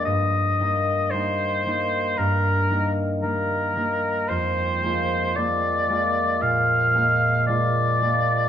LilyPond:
<<
  \new Staff \with { instrumentName = "Oboe" } { \time 4/4 \key ees \major \tempo 4 = 57 ees''4 c''4 bes'8. r16 bes'4 | c''4 d''4 f''4 d''4 | }
  \new Staff \with { instrumentName = "Harp" } { \time 4/4 \key ees \major <g, bes>8 <g bes ees'>8 <g bes ees'>8 <g bes ees'>8 g,8 <g bes ees'>8 <g bes ees'>8 <g bes ees'>8 | f,8 <aes bes f'>8 <aes bes f'>8 <aes bes f'>8 bes,8 <aes bes f'>8 <aes bes f'>8 <aes bes f'>8 | }
>>